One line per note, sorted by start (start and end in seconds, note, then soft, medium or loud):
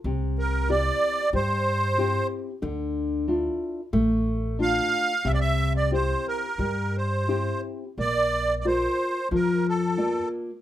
0.04 0.88 C2 medium
0.04 0.67 C3 medium
0.39 0.70 A#4 medium
0.69 1.20 C4 soft
0.69 1.20 E4 soft
0.69 1.21 G4 soft
0.69 1.30 D5 medium
1.33 2.17 G2 medium
1.33 1.96 G3 medium
1.33 2.27 C5 medium
1.98 2.50 C4 soft
1.98 2.50 E4 soft
1.98 2.50 G4 soft
2.62 3.47 D2 medium
2.62 3.25 D3 medium
3.28 3.80 D4 soft
3.28 3.80 E4 soft
3.28 3.80 F4 medium
3.93 4.79 A1 medium
3.93 4.56 A3 medium
4.59 5.12 D4 soft
4.59 5.12 F4 medium
4.59 5.28 F5 loud
5.25 6.12 C2 medium
5.25 5.89 C3 medium
5.25 5.32 E5 loud
5.34 5.39 D5 medium
5.41 5.73 E5 loud
5.77 5.91 D5 medium
5.91 6.45 C4 soft
5.91 6.45 E4 soft
5.91 6.46 G4 soft
5.91 6.27 C5 medium
6.28 6.97 A#4 medium
6.58 7.48 G2 medium
6.58 7.26 G3 medium
6.97 7.61 C5 medium
7.28 7.83 C4 soft
7.28 7.83 E4 soft
7.28 7.83 G4 soft
7.98 8.85 A#1 medium
7.98 8.63 A#3 medium
7.98 8.55 D5 loud
8.60 8.66 D5 medium
8.65 9.18 F4 soft
8.65 9.18 A#4 soft
8.65 9.28 C5 medium
8.65 9.19 D5 soft
9.31 10.17 F2 medium
9.31 9.96 F3 medium
9.31 9.67 A#4 medium
9.69 10.29 A4 medium
9.97 10.50 A#3 soft
9.97 10.49 F4 soft
9.97 10.50 D5 soft